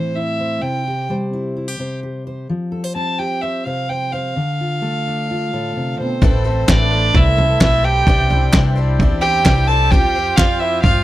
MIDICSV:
0, 0, Header, 1, 8, 480
1, 0, Start_track
1, 0, Key_signature, 0, "minor"
1, 0, Tempo, 466926
1, 636, Time_signature, 4, 2, 24, 8
1, 5916, Tempo, 461894
1, 11404, End_track
2, 0, Start_track
2, 0, Title_t, "Fiddle"
2, 0, Program_c, 0, 110
2, 0, Note_on_c, 0, 72, 55
2, 159, Note_on_c, 0, 76, 63
2, 174, Note_off_c, 0, 72, 0
2, 637, Note_on_c, 0, 79, 68
2, 652, Note_off_c, 0, 76, 0
2, 1118, Note_off_c, 0, 79, 0
2, 3036, Note_on_c, 0, 81, 61
2, 3273, Note_on_c, 0, 79, 68
2, 3288, Note_off_c, 0, 81, 0
2, 3510, Note_on_c, 0, 76, 59
2, 3525, Note_off_c, 0, 79, 0
2, 3762, Note_on_c, 0, 77, 61
2, 3778, Note_off_c, 0, 76, 0
2, 3999, Note_on_c, 0, 79, 70
2, 4014, Note_off_c, 0, 77, 0
2, 4235, Note_on_c, 0, 77, 65
2, 4250, Note_off_c, 0, 79, 0
2, 6155, Note_off_c, 0, 77, 0
2, 6163, Note_on_c, 0, 72, 76
2, 6900, Note_on_c, 0, 74, 93
2, 6915, Note_off_c, 0, 72, 0
2, 7387, Note_on_c, 0, 76, 102
2, 7402, Note_off_c, 0, 74, 0
2, 7855, Note_off_c, 0, 76, 0
2, 7863, Note_on_c, 0, 76, 112
2, 8089, Note_on_c, 0, 79, 111
2, 8104, Note_off_c, 0, 76, 0
2, 8805, Note_off_c, 0, 79, 0
2, 9512, Note_on_c, 0, 79, 118
2, 9991, Note_on_c, 0, 81, 115
2, 10006, Note_off_c, 0, 79, 0
2, 10229, Note_on_c, 0, 79, 120
2, 10245, Note_off_c, 0, 81, 0
2, 10705, Note_on_c, 0, 77, 105
2, 10720, Note_off_c, 0, 79, 0
2, 10942, Note_on_c, 0, 76, 99
2, 10958, Note_off_c, 0, 77, 0
2, 11175, Note_off_c, 0, 76, 0
2, 11181, Note_on_c, 0, 77, 111
2, 11404, Note_off_c, 0, 77, 0
2, 11404, End_track
3, 0, Start_track
3, 0, Title_t, "Trumpet"
3, 0, Program_c, 1, 56
3, 6162, Note_on_c, 1, 60, 54
3, 6891, Note_on_c, 1, 62, 77
3, 6907, Note_off_c, 1, 60, 0
3, 7373, Note_on_c, 1, 64, 87
3, 7389, Note_off_c, 1, 62, 0
3, 7848, Note_off_c, 1, 64, 0
3, 7858, Note_on_c, 1, 64, 96
3, 8096, Note_on_c, 1, 67, 98
3, 8111, Note_off_c, 1, 64, 0
3, 8808, Note_off_c, 1, 67, 0
3, 9516, Note_on_c, 1, 67, 102
3, 9999, Note_on_c, 1, 69, 88
3, 10015, Note_off_c, 1, 67, 0
3, 10243, Note_on_c, 1, 67, 104
3, 10258, Note_off_c, 1, 69, 0
3, 10721, Note_on_c, 1, 65, 90
3, 10737, Note_off_c, 1, 67, 0
3, 10970, Note_on_c, 1, 64, 80
3, 10985, Note_off_c, 1, 65, 0
3, 11191, Note_off_c, 1, 64, 0
3, 11198, Note_on_c, 1, 65, 90
3, 11404, Note_off_c, 1, 65, 0
3, 11404, End_track
4, 0, Start_track
4, 0, Title_t, "Steel-string acoustic guitar"
4, 0, Program_c, 2, 25
4, 0, Note_on_c, 2, 45, 48
4, 0, Note_on_c, 2, 52, 38
4, 0, Note_on_c, 2, 57, 38
4, 0, Note_on_c, 2, 60, 36
4, 0, Note_on_c, 2, 64, 36
4, 155, Note_off_c, 2, 64, 0
4, 168, Note_on_c, 2, 64, 37
4, 405, Note_on_c, 2, 72, 39
4, 609, Note_off_c, 2, 52, 0
4, 611, Note_off_c, 2, 57, 0
4, 637, Note_off_c, 2, 45, 0
4, 641, Note_on_c, 2, 48, 51
4, 883, Note_off_c, 2, 64, 0
4, 900, Note_on_c, 2, 67, 33
4, 1124, Note_on_c, 2, 55, 44
4, 1128, Note_off_c, 2, 72, 0
4, 1132, Note_on_c, 2, 72, 45
4, 1367, Note_off_c, 2, 60, 0
4, 1371, Note_on_c, 2, 64, 43
4, 1598, Note_off_c, 2, 64, 0
4, 1606, Note_off_c, 2, 67, 0
4, 1610, Note_on_c, 2, 64, 38
4, 1725, Note_off_c, 2, 64, 0
4, 1725, Note_on_c, 2, 67, 34
4, 1829, Note_off_c, 2, 48, 0
4, 1836, Note_off_c, 2, 72, 0
4, 1841, Note_on_c, 2, 48, 41
4, 1849, Note_on_c, 2, 72, 45
4, 2076, Note_off_c, 2, 67, 0
4, 2088, Note_on_c, 2, 67, 36
4, 2319, Note_off_c, 2, 72, 0
4, 2332, Note_on_c, 2, 72, 45
4, 2532, Note_off_c, 2, 48, 0
4, 2535, Note_off_c, 2, 67, 0
4, 2537, Note_off_c, 2, 72, 0
4, 2564, Note_on_c, 2, 53, 55
4, 2794, Note_on_c, 2, 69, 43
4, 2917, Note_off_c, 2, 69, 0
4, 2917, Note_on_c, 2, 72, 42
4, 3031, Note_off_c, 2, 72, 0
4, 3034, Note_on_c, 2, 60, 42
4, 3043, Note_on_c, 2, 72, 45
4, 3282, Note_on_c, 2, 67, 41
4, 3512, Note_off_c, 2, 72, 0
4, 3524, Note_on_c, 2, 72, 48
4, 3757, Note_off_c, 2, 72, 0
4, 3762, Note_on_c, 2, 48, 42
4, 3770, Note_on_c, 2, 72, 46
4, 3997, Note_off_c, 2, 72, 0
4, 4009, Note_on_c, 2, 72, 43
4, 4237, Note_off_c, 2, 72, 0
4, 4249, Note_on_c, 2, 72, 44
4, 4453, Note_off_c, 2, 48, 0
4, 4453, Note_off_c, 2, 67, 0
4, 4455, Note_off_c, 2, 53, 0
4, 4456, Note_off_c, 2, 72, 0
4, 4478, Note_off_c, 2, 60, 0
4, 4485, Note_off_c, 2, 55, 0
4, 4485, Note_on_c, 2, 50, 56
4, 4733, Note_on_c, 2, 65, 41
4, 4952, Note_on_c, 2, 57, 48
4, 4957, Note_on_c, 2, 69, 49
4, 5215, Note_on_c, 2, 62, 43
4, 5443, Note_off_c, 2, 65, 0
4, 5455, Note_on_c, 2, 65, 39
4, 5677, Note_off_c, 2, 69, 0
4, 5685, Note_on_c, 2, 45, 49
4, 5691, Note_on_c, 2, 69, 52
4, 5921, Note_off_c, 2, 45, 0
4, 5926, Note_on_c, 2, 48, 45
4, 6163, Note_off_c, 2, 48, 0
4, 6169, Note_on_c, 2, 47, 43
4, 6366, Note_off_c, 2, 57, 0
4, 6378, Note_off_c, 2, 62, 0
4, 6379, Note_off_c, 2, 65, 0
4, 6401, Note_off_c, 2, 50, 0
4, 6405, Note_off_c, 2, 47, 0
4, 8328, Note_off_c, 2, 69, 0
4, 11404, End_track
5, 0, Start_track
5, 0, Title_t, "Brass ensemble"
5, 0, Program_c, 3, 61
5, 6402, Note_on_c, 3, 57, 83
5, 6408, Note_on_c, 3, 60, 88
5, 8304, Note_off_c, 3, 57, 0
5, 8322, Note_on_c, 3, 62, 75
5, 8326, Note_on_c, 3, 48, 83
5, 8326, Note_on_c, 3, 64, 78
5, 8328, Note_on_c, 3, 67, 95
5, 10221, Note_off_c, 3, 62, 0
5, 10222, Note_off_c, 3, 48, 0
5, 10222, Note_off_c, 3, 64, 0
5, 10246, Note_on_c, 3, 65, 90
5, 11404, Note_off_c, 3, 60, 0
5, 11404, Note_off_c, 3, 65, 0
5, 11404, Note_off_c, 3, 67, 0
5, 11404, End_track
6, 0, Start_track
6, 0, Title_t, "Twelve-string acoustic guitar"
6, 0, Program_c, 4, 25
6, 6394, Note_on_c, 4, 45, 85
6, 6406, Note_on_c, 4, 52, 87
6, 6407, Note_on_c, 4, 57, 82
6, 6415, Note_on_c, 4, 60, 85
6, 6417, Note_on_c, 4, 69, 95
6, 6423, Note_on_c, 4, 71, 84
6, 6617, Note_off_c, 4, 71, 0
6, 6629, Note_off_c, 4, 69, 0
6, 6629, Note_on_c, 4, 71, 61
6, 6637, Note_off_c, 4, 60, 0
6, 6638, Note_off_c, 4, 45, 0
6, 6641, Note_on_c, 4, 69, 60
6, 6644, Note_off_c, 4, 52, 0
6, 6644, Note_off_c, 4, 57, 0
6, 6649, Note_on_c, 4, 60, 50
6, 6663, Note_on_c, 4, 57, 47
6, 6876, Note_off_c, 4, 71, 0
6, 6879, Note_off_c, 4, 57, 0
6, 6879, Note_on_c, 4, 45, 82
6, 6880, Note_off_c, 4, 60, 0
6, 6881, Note_off_c, 4, 69, 0
6, 6884, Note_on_c, 4, 52, 85
6, 6891, Note_on_c, 4, 57, 82
6, 6892, Note_on_c, 4, 60, 88
6, 6897, Note_on_c, 4, 69, 88
6, 6905, Note_on_c, 4, 71, 92
6, 7101, Note_off_c, 4, 71, 0
6, 7114, Note_on_c, 4, 71, 51
6, 7118, Note_off_c, 4, 69, 0
6, 7121, Note_off_c, 4, 45, 0
6, 7123, Note_off_c, 4, 52, 0
6, 7127, Note_off_c, 4, 57, 0
6, 7127, Note_off_c, 4, 60, 0
6, 7131, Note_on_c, 4, 69, 46
6, 7140, Note_on_c, 4, 60, 54
6, 7155, Note_on_c, 4, 57, 49
6, 7339, Note_off_c, 4, 57, 0
6, 7350, Note_off_c, 4, 60, 0
6, 7351, Note_on_c, 4, 57, 52
6, 7358, Note_off_c, 4, 71, 0
6, 7360, Note_off_c, 4, 69, 0
6, 7362, Note_on_c, 4, 60, 63
6, 7373, Note_on_c, 4, 69, 64
6, 7385, Note_on_c, 4, 71, 75
6, 7570, Note_off_c, 4, 71, 0
6, 7582, Note_on_c, 4, 71, 49
6, 7584, Note_off_c, 4, 69, 0
6, 7596, Note_on_c, 4, 69, 49
6, 7597, Note_off_c, 4, 57, 0
6, 7598, Note_off_c, 4, 60, 0
6, 7610, Note_on_c, 4, 60, 49
6, 7619, Note_on_c, 4, 57, 42
6, 7829, Note_off_c, 4, 57, 0
6, 7832, Note_off_c, 4, 71, 0
6, 7832, Note_on_c, 4, 45, 73
6, 7833, Note_off_c, 4, 60, 0
6, 7839, Note_off_c, 4, 69, 0
6, 7841, Note_on_c, 4, 57, 70
6, 7843, Note_on_c, 4, 52, 77
6, 7846, Note_on_c, 4, 60, 75
6, 7854, Note_on_c, 4, 69, 94
6, 7857, Note_on_c, 4, 71, 88
6, 8055, Note_off_c, 4, 71, 0
6, 8065, Note_off_c, 4, 69, 0
6, 8067, Note_on_c, 4, 71, 54
6, 8074, Note_off_c, 4, 60, 0
6, 8077, Note_off_c, 4, 45, 0
6, 8078, Note_on_c, 4, 69, 56
6, 8082, Note_off_c, 4, 52, 0
6, 8082, Note_off_c, 4, 57, 0
6, 8087, Note_on_c, 4, 60, 48
6, 8098, Note_on_c, 4, 57, 47
6, 8315, Note_off_c, 4, 71, 0
6, 8320, Note_off_c, 4, 69, 0
6, 8321, Note_on_c, 4, 48, 79
6, 8324, Note_off_c, 4, 57, 0
6, 8324, Note_off_c, 4, 60, 0
6, 8326, Note_on_c, 4, 52, 84
6, 8328, Note_on_c, 4, 55, 94
6, 8338, Note_on_c, 4, 62, 90
6, 8338, Note_on_c, 4, 64, 93
6, 8347, Note_on_c, 4, 72, 90
6, 8547, Note_off_c, 4, 72, 0
6, 8559, Note_off_c, 4, 64, 0
6, 8560, Note_on_c, 4, 72, 59
6, 8561, Note_off_c, 4, 48, 0
6, 8564, Note_off_c, 4, 52, 0
6, 8565, Note_off_c, 4, 55, 0
6, 8570, Note_off_c, 4, 62, 0
6, 8572, Note_on_c, 4, 64, 58
6, 8581, Note_on_c, 4, 62, 53
6, 8590, Note_on_c, 4, 55, 51
6, 8801, Note_off_c, 4, 72, 0
6, 8802, Note_on_c, 4, 48, 98
6, 8804, Note_off_c, 4, 55, 0
6, 8804, Note_on_c, 4, 52, 92
6, 8805, Note_off_c, 4, 62, 0
6, 8806, Note_off_c, 4, 64, 0
6, 8817, Note_on_c, 4, 55, 101
6, 8818, Note_on_c, 4, 62, 101
6, 8820, Note_on_c, 4, 64, 87
6, 8829, Note_on_c, 4, 72, 99
6, 9022, Note_off_c, 4, 72, 0
6, 9035, Note_on_c, 4, 72, 65
6, 9038, Note_off_c, 4, 64, 0
6, 9042, Note_off_c, 4, 48, 0
6, 9042, Note_off_c, 4, 52, 0
6, 9047, Note_off_c, 4, 62, 0
6, 9049, Note_off_c, 4, 55, 0
6, 9051, Note_on_c, 4, 64, 62
6, 9059, Note_on_c, 4, 62, 58
6, 9069, Note_on_c, 4, 55, 54
6, 9274, Note_off_c, 4, 55, 0
6, 9278, Note_off_c, 4, 72, 0
6, 9286, Note_off_c, 4, 64, 0
6, 9287, Note_on_c, 4, 55, 71
6, 9290, Note_off_c, 4, 62, 0
6, 9301, Note_on_c, 4, 62, 68
6, 9312, Note_on_c, 4, 64, 75
6, 9315, Note_on_c, 4, 72, 70
6, 9509, Note_off_c, 4, 72, 0
6, 9522, Note_on_c, 4, 72, 60
6, 9523, Note_off_c, 4, 64, 0
6, 9524, Note_off_c, 4, 55, 0
6, 9530, Note_off_c, 4, 62, 0
6, 9536, Note_on_c, 4, 64, 51
6, 9549, Note_on_c, 4, 62, 47
6, 9559, Note_on_c, 4, 55, 52
6, 9759, Note_off_c, 4, 55, 0
6, 9761, Note_off_c, 4, 72, 0
6, 9763, Note_on_c, 4, 48, 79
6, 9766, Note_off_c, 4, 62, 0
6, 9768, Note_off_c, 4, 64, 0
6, 9770, Note_on_c, 4, 52, 89
6, 9771, Note_on_c, 4, 55, 84
6, 9779, Note_on_c, 4, 62, 91
6, 9783, Note_on_c, 4, 64, 74
6, 9784, Note_on_c, 4, 72, 93
6, 9991, Note_off_c, 4, 72, 0
6, 10001, Note_off_c, 4, 48, 0
6, 10003, Note_on_c, 4, 72, 55
6, 10005, Note_off_c, 4, 52, 0
6, 10005, Note_off_c, 4, 55, 0
6, 10009, Note_off_c, 4, 62, 0
6, 10009, Note_off_c, 4, 64, 0
6, 10021, Note_on_c, 4, 64, 61
6, 10031, Note_on_c, 4, 62, 54
6, 10041, Note_on_c, 4, 55, 47
6, 10239, Note_off_c, 4, 55, 0
6, 10241, Note_off_c, 4, 72, 0
6, 10243, Note_on_c, 4, 53, 91
6, 10250, Note_off_c, 4, 64, 0
6, 10251, Note_on_c, 4, 55, 75
6, 10255, Note_off_c, 4, 62, 0
6, 10259, Note_on_c, 4, 60, 98
6, 10263, Note_on_c, 4, 67, 91
6, 10265, Note_on_c, 4, 72, 97
6, 10477, Note_off_c, 4, 72, 0
6, 10481, Note_off_c, 4, 53, 0
6, 10485, Note_off_c, 4, 55, 0
6, 10489, Note_off_c, 4, 60, 0
6, 10490, Note_on_c, 4, 72, 62
6, 10491, Note_off_c, 4, 67, 0
6, 10511, Note_on_c, 4, 67, 52
6, 10523, Note_on_c, 4, 60, 51
6, 10723, Note_off_c, 4, 60, 0
6, 10724, Note_off_c, 4, 72, 0
6, 10724, Note_on_c, 4, 53, 78
6, 10730, Note_off_c, 4, 67, 0
6, 10732, Note_on_c, 4, 55, 83
6, 10736, Note_on_c, 4, 60, 89
6, 10742, Note_on_c, 4, 67, 94
6, 10744, Note_on_c, 4, 72, 91
6, 10951, Note_off_c, 4, 72, 0
6, 10961, Note_off_c, 4, 53, 0
6, 10964, Note_off_c, 4, 67, 0
6, 10964, Note_on_c, 4, 72, 53
6, 10965, Note_off_c, 4, 55, 0
6, 10967, Note_off_c, 4, 60, 0
6, 10976, Note_on_c, 4, 67, 57
6, 10999, Note_on_c, 4, 60, 52
6, 11194, Note_off_c, 4, 60, 0
6, 11199, Note_on_c, 4, 55, 62
6, 11201, Note_off_c, 4, 72, 0
6, 11207, Note_off_c, 4, 67, 0
6, 11207, Note_on_c, 4, 60, 66
6, 11218, Note_on_c, 4, 67, 62
6, 11227, Note_on_c, 4, 72, 70
6, 11404, Note_off_c, 4, 55, 0
6, 11404, Note_off_c, 4, 60, 0
6, 11404, Note_off_c, 4, 67, 0
6, 11404, Note_off_c, 4, 72, 0
6, 11404, End_track
7, 0, Start_track
7, 0, Title_t, "Upright bass"
7, 0, Program_c, 5, 32
7, 6398, Note_on_c, 5, 33, 96
7, 6850, Note_off_c, 5, 33, 0
7, 6882, Note_on_c, 5, 33, 95
7, 7333, Note_off_c, 5, 33, 0
7, 7364, Note_on_c, 5, 36, 105
7, 7813, Note_off_c, 5, 36, 0
7, 7842, Note_on_c, 5, 35, 99
7, 8292, Note_off_c, 5, 35, 0
7, 8323, Note_on_c, 5, 36, 93
7, 8773, Note_off_c, 5, 36, 0
7, 8805, Note_on_c, 5, 36, 101
7, 9253, Note_off_c, 5, 36, 0
7, 9285, Note_on_c, 5, 40, 102
7, 9733, Note_off_c, 5, 40, 0
7, 9761, Note_on_c, 5, 36, 106
7, 10210, Note_off_c, 5, 36, 0
7, 10239, Note_on_c, 5, 41, 88
7, 10689, Note_off_c, 5, 41, 0
7, 10719, Note_on_c, 5, 41, 89
7, 11169, Note_off_c, 5, 41, 0
7, 11199, Note_on_c, 5, 43, 105
7, 11404, Note_off_c, 5, 43, 0
7, 11404, End_track
8, 0, Start_track
8, 0, Title_t, "Drums"
8, 6398, Note_on_c, 9, 36, 127
8, 6400, Note_on_c, 9, 43, 120
8, 6502, Note_off_c, 9, 36, 0
8, 6504, Note_off_c, 9, 43, 0
8, 6880, Note_on_c, 9, 36, 115
8, 6880, Note_on_c, 9, 38, 125
8, 6881, Note_on_c, 9, 39, 100
8, 6984, Note_off_c, 9, 36, 0
8, 6984, Note_off_c, 9, 38, 0
8, 6985, Note_off_c, 9, 39, 0
8, 7360, Note_on_c, 9, 36, 127
8, 7362, Note_on_c, 9, 43, 113
8, 7464, Note_off_c, 9, 36, 0
8, 7466, Note_off_c, 9, 43, 0
8, 7608, Note_on_c, 9, 43, 86
8, 7712, Note_off_c, 9, 43, 0
8, 7841, Note_on_c, 9, 36, 113
8, 7843, Note_on_c, 9, 38, 114
8, 7843, Note_on_c, 9, 39, 98
8, 7945, Note_off_c, 9, 36, 0
8, 7947, Note_off_c, 9, 38, 0
8, 7947, Note_off_c, 9, 39, 0
8, 8319, Note_on_c, 9, 43, 127
8, 8321, Note_on_c, 9, 36, 124
8, 8423, Note_off_c, 9, 43, 0
8, 8425, Note_off_c, 9, 36, 0
8, 8566, Note_on_c, 9, 43, 87
8, 8670, Note_off_c, 9, 43, 0
8, 8801, Note_on_c, 9, 39, 105
8, 8802, Note_on_c, 9, 36, 117
8, 8804, Note_on_c, 9, 38, 125
8, 8905, Note_off_c, 9, 39, 0
8, 8906, Note_off_c, 9, 36, 0
8, 8908, Note_off_c, 9, 38, 0
8, 9283, Note_on_c, 9, 36, 119
8, 9287, Note_on_c, 9, 43, 117
8, 9387, Note_off_c, 9, 36, 0
8, 9390, Note_off_c, 9, 43, 0
8, 9758, Note_on_c, 9, 39, 92
8, 9761, Note_on_c, 9, 36, 107
8, 9764, Note_on_c, 9, 38, 118
8, 9862, Note_off_c, 9, 39, 0
8, 9864, Note_off_c, 9, 36, 0
8, 9867, Note_off_c, 9, 38, 0
8, 10240, Note_on_c, 9, 36, 122
8, 10241, Note_on_c, 9, 43, 120
8, 10344, Note_off_c, 9, 36, 0
8, 10345, Note_off_c, 9, 43, 0
8, 10717, Note_on_c, 9, 38, 120
8, 10719, Note_on_c, 9, 36, 127
8, 10724, Note_on_c, 9, 39, 105
8, 10821, Note_off_c, 9, 38, 0
8, 10823, Note_off_c, 9, 36, 0
8, 10828, Note_off_c, 9, 39, 0
8, 11197, Note_on_c, 9, 43, 110
8, 11198, Note_on_c, 9, 36, 119
8, 11301, Note_off_c, 9, 43, 0
8, 11302, Note_off_c, 9, 36, 0
8, 11404, End_track
0, 0, End_of_file